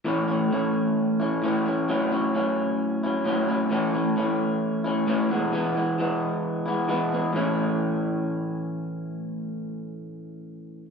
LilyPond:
\new Staff \with { instrumentName = "Clean electric guitar" } { \time 4/4 \key a \major \tempo 4 = 132 <a, e a cis' e'>8 <a cis' e'>8 <e a cis' e'>4. <a cis' e'>8 <a, e a cis' e'>8 <a cis' e'>8 | <a, fis cis' e'>8 <fis cis' e'>8 <a, fis cis' e'>4. <fis cis' e'>8 <a, fis cis' e'>8 <fis cis' e'>8 | <a, e a cis' e'>8 <a cis' e'>8 <e a cis' e'>4. <a cis' e'>8 <a, e a cis' e'>8 <e gis b e'>8 | <e gis b e'>8 <gis b e'>8 <e gis b e'>4. <gis b e'>8 <e gis b e'>8 <gis b e'>8 |
<a, e a cis' e'>1~ | <a, e a cis' e'>1 | }